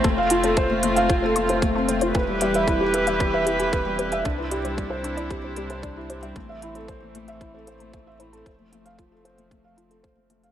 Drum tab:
HH |x-xxx-xxx-xxx-xx|x-xxx-xxx-xxx-xx|x-xxx-xxx-xxx-xx|x-xxx-xxx-xxx-xx|
BD |o---o---o---o---|o---o---o---o---|o---o---o---o---|o---o---o---o---|

HH |x-xxx-xxx-xxx-xx|
BD |o---o---o---o---|